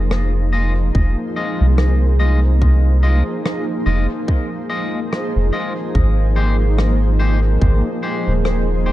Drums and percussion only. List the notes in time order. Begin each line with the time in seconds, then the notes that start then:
0.11 cross-stick
0.95 kick
1.78 cross-stick
2.62 kick
3.46 cross-stick
4.28 kick
5.13 cross-stick
5.95 kick
6.78 cross-stick
7.62 kick
8.45 cross-stick